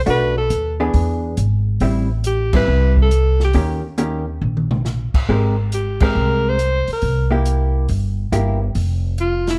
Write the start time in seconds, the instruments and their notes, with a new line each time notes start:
0.06 upright bass B1, hollow-body jazz guitar A3 D4 F#4, alto saxophone B4, kick, open hi-hat
0.38 alto saxophone A4
0.50 upright bass D#2, closed hi-hat
0.80 hollow-body jazz guitar E3 B3 D4 G#4
0.94 upright bass E2, kick, open hi-hat
1.37 upright bass G#1, closed hi-hat
1.80 upright bass A1, hollow-body jazz guitar G3 C4 E4, kick, open hi-hat
2.24 alto saxophone G4, closed hi-hat
2.53 hollow-body jazz guitar G3 C4 E4, alto saxophone B4, kick, crash
2.68 upright bass C2
2.96 kick
3.02 alto saxophone A4
3.11 closed hi-hat
3.40 snare
3.45 alto saxophone G4
3.53 upright bass D#2, hollow-body jazz guitar D#3 A#3 C#4 G4, kick, open hi-hat
3.98 hollow-body jazz guitar D#3 A#3 C#4 G4, closed hi-hat
4.42 upright bass A#1, high tom
4.57 high tom
4.71 mid tom
4.85 snare
5.14 muted upright bass stroke, kick, crash
5.29 upright bass G#1, hollow-body jazz guitar G#3 C4 G4 A#4, kick
5.72 alto saxophone G4, closed hi-hat
6.00 hollow-body jazz guitar G#3 C4 G4 A#4, alto saxophone A#4, kick, crash
6.15 upright bass C2
6.49 alto saxophone C5
6.59 closed hi-hat
6.87 muted upright bass stroke, open hi-hat
6.93 alto saxophone A#4
7.02 upright bass C2, kick, open hi-hat
7.31 hollow-body jazz guitar A#3 E4 G4
7.45 closed hi-hat
7.88 upright bass G1, kick, open hi-hat
8.32 upright bass G1, hollow-body jazz guitar A#3 E4 G4, closed hi-hat
8.75 upright bass F1, kick, open hi-hat
9.18 alto saxophone F4, closed hi-hat
9.47 alto saxophone E4, snare, open hi-hat